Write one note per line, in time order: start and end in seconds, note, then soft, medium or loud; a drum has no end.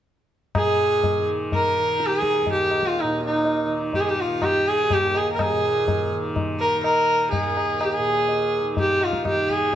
0.55 3.03 A#2 medium
0.55 1.25 G#4 medium
0.55 tabla na medium
0.55 tabla ge medium
1.03 tabla tin medium
1.03 tabla ge medium
1.18 1.79 D#3 medium
1.52 2.07 A#4 medium
1.52 tabla tin medium
1.52 tabla ge medium
1.79 3.65 D#3 medium
2.00 tabla te medium
2.06 2.18 G4 medium
2.11 tabla te medium
2.18 2.51 G#4 medium
2.22 tabla ke medium
2.35 tabla te medium
2.41 4.89 D#2 medium
2.46 tabla tin medium
2.46 tabla ge medium
2.52 2.89 G4 medium
2.71 tabla na medium
2.83 tabla ke medium
2.88 3.02 F4 medium
2.96 tabla te medium
3.00 5.50 A#2 medium
3.00 3.23 D#4 medium
3.21 tabla te medium
3.26 3.69 D#4 medium
3.45 tabla tin medium
3.65 4.28 D#3 medium
3.93 4.02 G4 medium
3.93 tabla tin medium
3.93 tabla ge medium
4.00 4.11 G#4 medium
4.09 4.22 G4 medium
4.21 4.46 F4 medium
4.28 6.12 D#3 medium
4.42 4.69 G4 medium
4.42 tabla na medium
4.42 tabla ge medium
4.66 4.95 G#4 medium
4.66 tabla te medium
4.89 7.35 D#2 medium
4.89 5.18 G4 medium
4.89 tabla tin medium
4.89 tabla ge medium
5.15 5.32 G#4 medium
5.15 tabla na medium
5.33 5.42 A#4 medium
5.39 6.12 G#4 medium
5.39 tabla na medium
5.39 tabla ge medium
5.51 7.97 A#2 medium
5.88 tabla tin medium
5.88 tabla ge medium
6.12 6.75 D#3 medium
6.36 tabla tin medium
6.36 tabla ge medium
6.60 6.82 A#4 medium
6.75 8.61 D#3 medium
6.83 7.28 A#4 medium
6.83 tabla na medium
7.31 7.82 G#4 medium
7.31 tabla tin medium
7.31 tabla ge medium
7.35 9.75 D#2 medium
7.57 tabla na medium
7.80 7.94 G4 medium
7.80 tabla na medium
7.92 8.65 G#4 medium
7.98 9.75 A#2 medium
8.29 tabla tin medium
8.61 9.22 D#3 medium
8.77 9.05 G4 medium
8.77 tabla tin medium
8.77 tabla ge medium
9.01 9.26 F4 medium
9.01 tabla na medium
9.13 tabla ke medium
9.22 9.75 D#3 soft
9.22 tabla na medium
9.22 tabla ge medium
9.27 9.52 G4 medium
9.49 9.75 G#4 medium
9.49 tabla ge soft